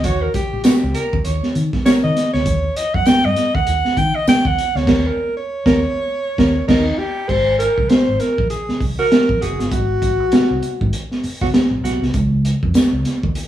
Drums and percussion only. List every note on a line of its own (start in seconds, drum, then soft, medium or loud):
0.04 kick loud
0.04 closed hi-hat medium
0.34 kick medium
0.34 closed hi-hat medium
0.64 snare loud
0.64 closed hi-hat medium
0.64 tambourine loud
0.94 closed hi-hat medium
1.13 kick medium
1.25 closed hi-hat medium
1.43 snare soft
1.55 closed hi-hat medium
1.73 kick medium
1.73 snare soft
1.86 snare loud
1.86 closed hi-hat medium
1.86 tambourine medium
2.16 snare soft
2.16 closed hi-hat medium
2.34 snare soft
2.46 kick loud
2.46 closed hi-hat medium
2.76 closed hi-hat medium
2.94 kick medium
3.06 snare loud
3.06 closed hi-hat medium
3.06 tambourine loud
3.36 snare soft
3.36 closed hi-hat medium
3.55 kick loud
3.67 closed hi-hat medium
3.85 snare soft
3.97 kick medium
3.97 closed hi-hat medium
4.27 snare loud
4.27 closed hi-hat medium
4.27 tambourine loud
4.45 kick loud
4.58 closed hi-hat medium
4.76 snare soft
4.87 kick loud
4.87 snare loud
4.87 crash medium
5.66 kick loud
5.66 snare loud
6.38 kick loud
6.38 snare loud
6.69 kick loud
6.69 snare loud
6.69 crash medium
7.29 kick loud
7.29 crash medium
7.60 closed hi-hat medium
7.78 kick medium
7.89 snare loud
7.89 closed hi-hat medium
8.20 snare soft
8.20 closed hi-hat medium
8.38 kick loud
8.50 closed hi-hat medium
8.69 snare soft
8.81 kick medium
8.81 open hi-hat medium
9.12 snare loud
9.12 closed hi-hat medium
9.29 kick medium
9.42 closed hi-hat medium
9.60 snare soft
9.60 closed hi-hat soft
9.71 kick loud
9.71 closed hi-hat medium
10.02 kick medium
10.02 closed hi-hat medium
10.32 snare loud
10.32 closed hi-hat medium
10.63 closed hi-hat medium
10.81 kick loud
10.93 closed hi-hat medium
11.11 snare soft
11.24 open hi-hat medium
11.41 kick medium
11.41 snare soft
11.54 snare loud
11.54 closed hi-hat medium
11.85 snare soft
11.85 closed hi-hat medium
12.03 snare soft
12.14 kick loud
12.14 closed hi-hat medium
12.45 closed hi-hat medium
12.63 kick medium
12.74 snare loud
12.74 closed hi-hat medium
12.74 tambourine medium
13.05 snare soft
13.05 closed hi-hat medium
13.23 kick medium
13.35 closed hi-hat medium